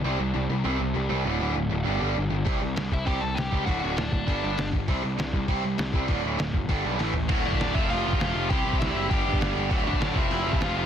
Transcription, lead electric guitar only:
\new Staff \with { instrumentName = "Lead electric guitar" } { \time 4/4 \key c \lydian \tempo 4 = 199 r1 | r1 | r4. <e' e''>8 <g' g''>8 <a' a''>8 <g' g''>4 | <fis' fis''>8 <fis' fis''>8 <d' d''>2~ <d' d''>8 r8 |
r1 | r1 | r8 <d' d''>4 <e' e''>8 <f' f''>4 <f' f''>4 | <g' g''>4 <e' e''>4 <g' g''>4 r4 |
r8 <d' d''>4 <e' e''>4. <f' f''>8 <f' f''>8 | }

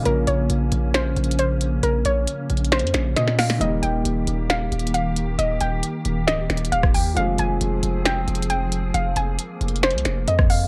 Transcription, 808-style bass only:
\new Staff \with { instrumentName = "808-style bass" } { \clef bass \time 4/4 \key bes \dorian \tempo 4 = 135 bes,,8 bes,,8 bes,,8 bes,,4 bes,,4. | bes,,8 bes,,8 r8 bes,,8. f,16 bes,,8 bes,4 | ees,,8 ees,,8 ees,,8 ees,,4 ees,,4. | ees,,8 ees,,8 r8 ees,,8 des,,16 ees,,16 ees,,8 ees,,8 ees,8 |
f,,8 f,,8 f,,8 f,,4 f,,4. | f,,8 f,,8 r8 f,,8. c,16 f,,8 f,4 | }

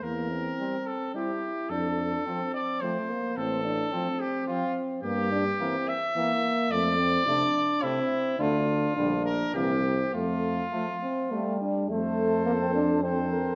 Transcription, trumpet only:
\new Staff \with { instrumentName = "Trumpet" } { \time 3/4 \key f \major \tempo 4 = 107 bes'4. a'8 g'4 | a'4. d''8 c''4 | a'4. g'8 f'8 r8 | g'4. e''4. |
d''2 e'4 | f'4. bes'8 g'4 | f'2~ f'8 r8 | c''2 c''4 | }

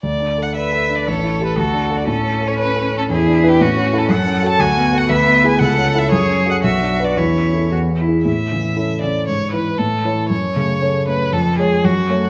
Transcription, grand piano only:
\new Staff \with { instrumentName = "Grand piano" } { \time 2/4 \key d \major \tempo 4 = 118 \tuplet 3/2 { d,8 d'8 a'8 d''8 a'8 d'8 } | \tuplet 3/2 { a,,8 e'8 <g' a'>8 d,8 d'8 <fis' a'>8 } | \tuplet 3/2 { a,8 cis'8 a'8 cis''8 a'8 cis'8 } | \tuplet 3/2 { e,8 d'8 <e' b'>8 a,8 cis'8 <e' a'>8 } |
\key a \major \tuplet 3/2 { fis,8 cis'8 <fis' a'>8 d,8 b8 <fis' a'>8 } | \tuplet 3/2 { d,8 b8 <e' gis'>8 cis,8 cis'8 <e' a'>8 } | \tuplet 3/2 { fis,8 cis'8 <fis' a'>8 b,,8 d'8 <fis' b'>8 } | \tuplet 3/2 { e,8 cis'8 <e' a'>8 e,8 b8 <e' gis'>8 } |
a,8 e8 <cis' e' a'>8 cis'8 | gis,8 <e' b'>8 a,8 <e' cis''>8 | fis,8 cis8 <cis' a' cis''>8 cis'8 | eis,8 <gis' cis''>8 fis,8 <a' cis''>8 | }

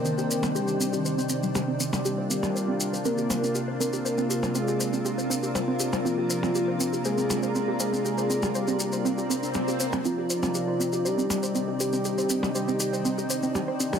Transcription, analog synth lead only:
\new Staff \with { instrumentName = "Analog synth lead" } { \time 4/4 \key bes \mixolydian \tempo 4 = 120 bes'4 g'4. r4. | g'2 bes'4. bes'8~ | bes'4 aes'4. r4. | f'2 aes'4. aes'8~ |
aes'4 g'4. r4. | f'2 g'4. g'8~ | g'4 g'4. r4. | }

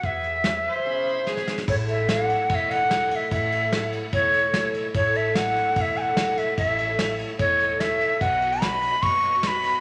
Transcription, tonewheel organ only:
\new Staff \with { instrumentName = "Tonewheel organ" } { \time 4/4 \key e \mixolydian \tempo 4 = 147 <gis' b' e''>4 <gis' b' cis''>4 <cis' gis' b''>4 <gis' b' cis''>4 | \key a \lydian <e' a' cis'' e''>4 <e' a' cis'' e''>4 <e' a' cis'' dis''>4 <e' a' cis'' dis''>4 | <e' a' cis'' fis''>4 <e' a' cis'' fis''>4 <e' a' cis'' e''>4 <e' a' cis'' e''>4 | <e' a' cis'' e''>4 <e' a' cis'' e''>4 <e' a' cis'' e''>4 <e' a' cis'' e''>4 |
<e' a' cis'' e''>4 <e' a' cis'' e''>4 <e' a' cis'' dis''>4 <e' a' cis'' e''>4 | <fis' b' cis'' dis''>4 <fis' b' cis'' dis''>4 <fis' b' cis'' dis''>4 <fis' b' cis'' dis''>4 | }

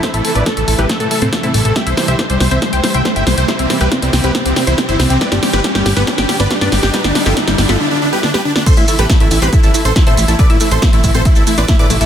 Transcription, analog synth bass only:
\new Staff \with { instrumentName = "Analog synth bass" } { \clef bass \time 4/4 \key a \minor \tempo 4 = 139 r16 a,,16 r16 a,,16 r16 a,,16 a,,16 a,,16 r16 a,16 r16 a,16 r16 a,16 a,,16 a,,16 | r16 c,16 r16 c,16 r16 c,16 c,16 c,16 r16 c,16 r16 c,16 r16 g,,16 c,16 c,16 | r16 c,16 r16 c,16 r16 c,16 c,16 c,16 r16 c,16 r16 c,16 r16 g,,16 c,16 c,16 | r16 g,,16 r16 g,,16 r16 g,,16 g,,16 g,,16 r16 g,,16 r16 g,,16 r16 g,16 g,,16 g,,16 |
r16 g,,16 r16 g,,16 r16 g,,16 g,,16 g,,16 r2 | r16 a,,16 r16 a,,16 r16 a,,16 a,,16 a,,16 r16 a,,16 r16 a,,16 r16 a,16 a,,16 a,,16 | r16 a,,16 r16 a,,16 r16 a,,16 a,,16 a,,16 r16 a,,16 r16 a,,16 r16 a,16 a,,16 a,,16 | }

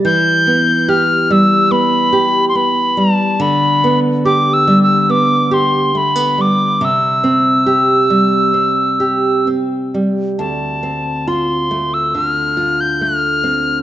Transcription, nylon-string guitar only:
\new Staff \with { instrumentName = "Nylon-string guitar" } { \time 4/4 \key d \dorian \tempo 4 = 70 e8 b8 g'8 g8 b8 g'8 b8 g8 | d8 b8 g'8 g8 b8 g'8 a16 b16 g8 | c8 c'8 g'8 g8 c'8 g'8 c'8 g8 | d,8 c'8 f'8 a8 d8 f'8 a8 c'8 | }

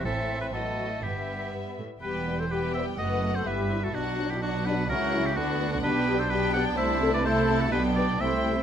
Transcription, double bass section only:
\new Staff \with { instrumentName = "Double bass section" } { \clef bass \time 2/4 \key e \minor \tempo 4 = 125 a,,4 a,,4 | g,,4 r4 | e,,2 | fis,,4 g,,4 |
b,,2 | cis,4 d,4 | \key g \major b,,2 | c,2 |
b,,4 c,4 | }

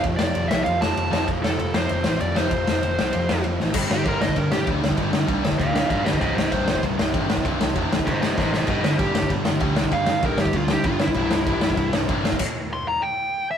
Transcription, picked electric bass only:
\new Staff \with { instrumentName = "Picked electric bass" } { \clef bass \time 4/4 \key g \mixolydian \tempo 4 = 194 f,,8 f,,8 f,,8 c,8 f,8 f,,8 f,,8 f,,8 | f,,8 f,,8 f,,8 f,8 f,,8 a,,8 f,,8 f,,8 | f,,8 f,,8 f,,8 c,8 f,8 f,,8 f,,8 a,,8 | g,,8 g,,8 g,,8 g,,8 g,,8 g,,8 d,4 |
g,,8 g,8 c,8 g,,8 d,4 g,,4 | c,,8 c,,8 c,,8 c,,8 c,,8 c,,8 g,,4 | c,,8 c,8 f,,8 c,,8 g,,4 a,,4 | g,,8 g,,8 g,,8 g,,8 g,,8 g,,8 d,4 |
g,,8 g,8 c,8 g,,8 d,4 g,,4 | c,,8 c,,8 c,,8 c,,8 c,,8 c,,8 g,,4 | r1 | }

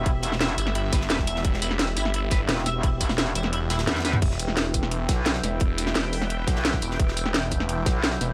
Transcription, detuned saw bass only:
\new Staff \with { instrumentName = "Detuned saw bass" } { \clef bass \time 4/4 \key e \minor \tempo 4 = 173 r4. g,,4. e,,4 | e,,4. g,,4. r4 | r4. e,,4. r4 | e,,2~ e,,8 r4 e,,8~ |
e,,4 e,,4. r4 e,,8 | e,,2~ e,,8 r4 e,,8 | }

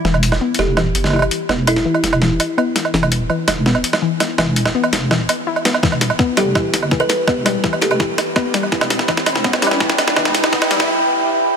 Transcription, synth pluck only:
\new Staff \with { instrumentName = "Synth pluck" } { \clef bass \time 4/4 \key e \minor \tempo 4 = 166 e4 b8 r8 e8 r8 e4 | b8 r8 e8 r8 e4 b8 r8 | e8 r8 e4 b8 r8 e8 r8 | e4 b8 r8 e8 r8 e'8 b8 |
e4 b8 g8 e8 r8 e4 | b8 g8 e8 r8 e4 b8 g8 | e8 r8 e4 b8 g8 e8 r8 | e4 b8 g8 r2 | }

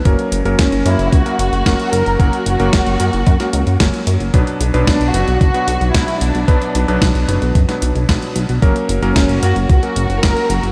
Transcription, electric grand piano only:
\new Staff \with { instrumentName = "Electric grand piano" } { \time 4/4 \key b \minor \tempo 4 = 112 <fis ais cis' ais'>8. <fis ais cis' ais'>8. <fis ais cis' ais'>8 r16 <fis ais cis' ais'>8. <fis ais cis' ais'>4 | <fis ais cis' ais'>8. <fis ais cis' ais'>8. <fis ais cis' ais'>8 r16 <fis ais cis' ais'>8. <fis ais cis' ais'>4 | <b, fis b d' b'>8. <b, fis b d' b'>8. <b, fis b d' b'>8 r16 <b, fis b d' b'>8. <b, fis b d' b'>4 | <b, fis b d' b'>8. <b, fis b d' b'>8. <b, fis b d' b'>8 r16 <b, fis b d' b'>8. <b, fis b d' b'>4 |
<fis ais cis' ais'>8. <fis ais cis' ais'>8. <fis ais cis' ais'>8 r16 <fis ais cis' ais'>8. <fis ais cis' ais'>4 | }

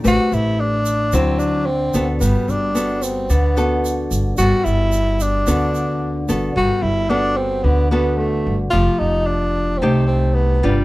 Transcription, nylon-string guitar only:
\new Staff \with { instrumentName = "Nylon-string guitar" } { \time 4/4 \key g \major \tempo 4 = 110 << { <c' g' b'>4. r8 <fis c' e'>4 r8 <b fis' a'>8~ | <b fis' a'>4 <b fis' a'>4 r8 <b fis' a'>4. | <b fis' a'>2 <b fis' a'>4. <b fis' a'>8~ | <b fis' a'>4 <b fis' a'>4. <b fis' a'>4. |
<a g'>2 <a ees' g'>4. <g d' f'>8 | } \\ { a2 d2 | g2 d2 | g2 d2 | g2 d2 |
f2 c2 | } >> }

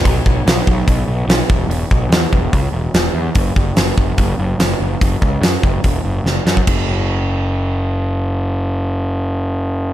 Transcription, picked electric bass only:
\new Staff \with { instrumentName = "Picked electric bass" } { \clef bass \time 4/4 \key e \lydian \tempo 4 = 145 b,,8 b,,8 b,,8 b,,8 b,,8 b,,8 b,,8 e,,8 | e,,8 b,,8 e,8 e,,8 cis,8 e,,8 e,,8 e,8 | fis,,8 fis,,8 fis,,8 fis,,8 fis,,8 fis,,8 fis,,8 fis,,8 | fis,,8 cis,8 fis,8 fis,,8 e,,8 fis,,8 fis,,8 fis,8 |
fis,,1~ | fis,,1 | }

